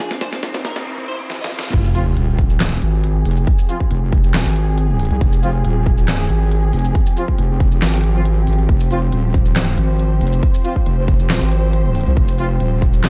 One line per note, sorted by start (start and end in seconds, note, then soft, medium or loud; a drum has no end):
0.00 0.82 F2 medium
0.00 0.82 F3 medium
0.00 0.82 G#3 medium
0.00 0.84 F4 medium
0.00 noise sweep medium
0.00 riser medium
0.11 0.20 C4 medium
0.11 snare medium
0.21 0.31 C5 medium
0.21 snare medium
0.21 closed hi-hat medium
0.21 shaker medium
0.33 0.41 C4 medium
0.33 snare medium
0.33 closed hi-hat soft
0.43 0.53 C4 medium
0.43 snare loud
0.54 0.63 C4 medium
0.54 snare medium
0.54 shaker medium
0.65 0.74 A#4 loud
0.65 snare loud
0.65 open hi-hat medium
0.76 0.85 C4 medium
0.76 snare medium
0.76 closed hi-hat soft
0.86 0.96 C4 medium
0.98 1.07 C4 medium
1.08 1.18 C5 medium
1.19 1.28 C4 medium
1.30 1.39 C4 medium
1.30 snare medium
1.41 1.50 D#5 medium
1.41 snare medium
1.52 1.61 C4 medium
1.59 snare loud
1.63 1.72 C4 medium
1.73 2.15 F1 loud
1.73 13.09 F3 medium
1.73 13.09 C4 medium
1.73 13.09 G4 medium
1.73 8.67 G#4 medium
1.73 kick loud
1.73 closed hi-hat medium
1.73 crash loud
1.73 sub drop medium
1.85 shaker medium
1.95 2.01 F3 medium
1.95 2.01 C4 medium
1.95 2.01 F4 loud
1.95 closed hi-hat medium
1.95 shaker soft
2.17 2.80 D#1 medium
2.17 closed hi-hat medium
2.39 kick loud
2.39 open hi-hat medium
2.50 shaker medium
2.60 snare loud
2.60 clap loud
2.60 closed hi-hat medium
2.82 3.24 G#1 medium
2.82 closed hi-hat medium
3.04 closed hi-hat medium
3.25 3.46 F1 loud
3.25 open hi-hat medium
3.31 closed hi-hat medium
3.37 closed hi-hat soft
3.37 shaker medium
3.47 kick loud
3.47 closed hi-hat medium
3.59 shaker medium
3.69 3.75 F3 medium
3.69 3.75 C4 medium
3.69 3.75 F4 medium
3.69 closed hi-hat medium
3.69 shaker medium
3.80 kick medium
3.91 4.33 F1 loud
3.91 closed hi-hat medium
4.12 kick loud
4.12 open hi-hat medium
4.24 shaker medium
4.34 4.44 D#1 medium
4.34 snare loud
4.34 clap medium
4.34 closed hi-hat medium
4.46 5.09 G#1 loud
4.56 closed hi-hat medium
4.78 closed hi-hat medium
4.99 open hi-hat medium
5.05 closed hi-hat medium
5.11 5.20 C2 loud
5.11 closed hi-hat soft
5.21 5.63 F1 loud
5.21 kick loud
5.21 closed hi-hat medium
5.33 shaker medium
5.43 5.49 F3 loud
5.43 5.49 C4 medium
5.43 5.49 F4 loud
5.43 closed hi-hat medium
5.43 shaker medium
5.65 6.28 D#1 loud
5.65 closed hi-hat medium
5.86 kick loud
5.86 open hi-hat medium
5.98 shaker medium
6.08 snare loud
6.08 clap medium
6.08 closed hi-hat medium
6.30 6.72 G#1 loud
6.30 closed hi-hat medium
6.52 closed hi-hat medium
6.73 6.93 F1 loud
6.73 open hi-hat medium
6.79 closed hi-hat medium
6.85 closed hi-hat soft
6.85 shaker medium
6.95 kick loud
6.95 closed hi-hat medium
7.06 shaker medium
7.17 7.23 F3 medium
7.17 7.23 C4 medium
7.17 7.23 F4 medium
7.17 closed hi-hat soft
7.17 shaker medium
7.28 kick medium
7.39 7.80 F1 loud
7.39 closed hi-hat medium
7.60 kick loud
7.60 open hi-hat medium
7.72 shaker medium
7.82 8.46 G#1 loud
7.82 snare loud
7.82 clap medium
7.82 closed hi-hat medium
8.04 closed hi-hat medium
8.15 8.21 F3 medium
8.15 8.21 C4 medium
8.15 8.21 F4 loud
8.25 closed hi-hat medium
8.47 8.67 G#1 loud
8.47 open hi-hat medium
8.53 closed hi-hat medium
8.59 closed hi-hat soft
8.69 9.11 F1 loud
8.69 13.09 C5 medium
8.69 kick loud
8.69 closed hi-hat medium
8.80 shaker medium
8.91 8.97 F3 loud
8.91 8.97 C4 medium
8.91 8.97 F4 loud
8.91 closed hi-hat medium
8.91 shaker medium
9.12 9.76 D#1 loud
9.12 closed hi-hat medium
9.34 kick loud
9.34 open hi-hat medium
9.46 shaker medium
9.56 snare loud
9.56 clap medium
9.56 closed hi-hat medium
9.78 10.19 G#1 loud
9.78 closed hi-hat medium
9.99 closed hi-hat medium
10.21 10.41 F1 loud
10.21 open hi-hat medium
10.27 closed hi-hat medium
10.33 closed hi-hat soft
10.33 shaker medium
10.43 kick loud
10.43 closed hi-hat medium
10.54 shaker medium
10.65 10.71 F3 medium
10.65 10.71 C4 medium
10.65 10.71 F4 loud
10.65 closed hi-hat medium
10.65 shaker medium
10.76 kick medium
10.86 11.28 F1 loud
10.86 closed hi-hat medium
11.08 kick loud
11.08 open hi-hat medium
11.19 shaker medium
11.30 11.39 D#1 medium
11.30 snare loud
11.30 clap medium
11.30 closed hi-hat medium
11.41 12.05 G#1 loud
11.52 closed hi-hat medium
11.73 closed hi-hat medium
11.95 open hi-hat loud
12.01 closed hi-hat medium
12.06 12.15 C2 loud
12.06 closed hi-hat soft
12.17 12.59 F1 loud
12.17 kick loud
12.17 closed hi-hat medium
12.28 shaker medium
12.38 12.45 F3 loud
12.38 12.45 C4 medium
12.38 12.45 F4 loud
12.38 closed hi-hat medium
12.38 shaker medium
12.60 13.09 D#1 loud
12.60 closed hi-hat medium
12.82 kick loud
12.82 open hi-hat medium
12.93 shaker medium
13.04 snare loud
13.04 clap medium
13.04 closed hi-hat medium